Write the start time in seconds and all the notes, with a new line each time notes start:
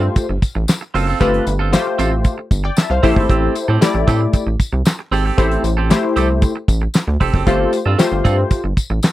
Already playing: A3 F4 G4 C5
0.03 muted clean electric guitar stroke
0.16 muted clean electric guitar stroke, kick, closed hi-hat, tambourine
0.29 G1, muted clean electric guitar stroke
0.42 kick, closed hi-hat, tambourine
0.55 A1, muted clean electric guitar stroke
0.68 muted clean electric guitar stroke, snare, clap, closed hi-hat, tambourine
0.81 muted clean electric guitar stroke
0.94 F#1 C4 F4 A4, open hi-hat, tambourine
1.07 C4 F4 A4
1.20 G1 A3 C4 F4 G4 A4 B4, kick, closed hi-hat, tambourine
1.34 closed hi-hat
1.46 G1, muted clean electric guitar stroke, closed hi-hat, tambourine
1.59 C4 F4 A4
1.72 A3 F4 G4 C5, snare, clap, closed hi-hat, tambourine
1.86 muted clean electric guitar stroke
1.99 A1 C4 F4 A4, closed hi-hat, tambourine
2.12 muted clean electric guitar stroke
2.25 muted clean electric guitar stroke, kick, closed hi-hat, tambourine
2.38 muted clean electric guitar stroke
2.51 G1, kick, closed hi-hat, tambourine
2.64 D5 G5, muted clean electric guitar stroke
2.77 E5 A5, muted clean electric guitar stroke, snare, clap, closed hi-hat, tambourine
2.90 C2 C5 F5, muted clean electric guitar stroke
3.03 A1 A3 C4 E4 G4 A4 C5, kick, open hi-hat, tambourine
3.16 G#1 C4 G4 A4, kick
3.29 A1 C4 G4 A4, kick, closed hi-hat
3.55 muted clean electric guitar stroke, closed hi-hat, tambourine
3.68 A2 C4 G4 A4
3.81 A3 E4 G4 D5, snare, clap, closed hi-hat, tambourine
3.95 A1, muted clean electric guitar stroke
4.07 A2 C4 G4 A4, kick, closed hi-hat, tambourine
4.21 muted clean electric guitar stroke
4.33 muted clean electric guitar stroke, kick, closed hi-hat, tambourine
4.47 A1, muted clean electric guitar stroke
4.60 kick, closed hi-hat, tambourine
4.73 C2, muted clean electric guitar stroke
4.85 muted clean electric guitar stroke, snare, clap, closed hi-hat, tambourine
4.99 muted clean electric guitar stroke
5.12 G#1 C4 G4 A4, open hi-hat, tambourine
5.25 C4 G4 A4
5.38 A1 A3 C4 E4 G4 A4 C5, kick, closed hi-hat, tambourine
5.51 closed hi-hat
5.64 A1, muted clean electric guitar stroke, closed hi-hat, tambourine
5.77 C4 G4 A4
5.90 A3 E4 G4 C5, muted clean electric guitar stroke, snare, clap, closed hi-hat, tambourine
6.03 muted clean electric guitar stroke
6.16 C2 C4 G4 A4, closed hi-hat, tambourine
6.29 muted clean electric guitar stroke
6.42 muted clean electric guitar stroke, kick, closed hi-hat, tambourine
6.56 muted clean electric guitar stroke
6.68 A1, kick, closed hi-hat, tambourine
6.82 muted clean electric guitar stroke
6.94 muted clean electric guitar stroke, snare, clap, closed hi-hat, tambourine
7.08 D2, muted clean electric guitar stroke
7.20 F1 C4 G4 A4, kick, open hi-hat
7.33 F#1 C4 G4 A4, kick
7.46 G1 A3 C4 F4 G4 A4 C5, kick, closed hi-hat
7.73 muted clean electric guitar stroke, closed hi-hat, tambourine
7.86 G2 C4 F4 A4
7.98 A3 F4 G4 C5, muted clean electric guitar stroke, snare, clap, closed hi-hat, tambourine
8.12 G1, muted clean electric guitar stroke
8.25 G2 C4 F4 A4, kick, closed hi-hat, tambourine
8.38 muted clean electric guitar stroke
8.51 muted clean electric guitar stroke, kick, closed hi-hat, tambourine
8.64 G1, muted clean electric guitar stroke
8.77 kick, closed hi-hat, tambourine
8.90 A1, muted clean electric guitar stroke
9.03 muted clean electric guitar stroke, snare, clap, closed hi-hat, tambourine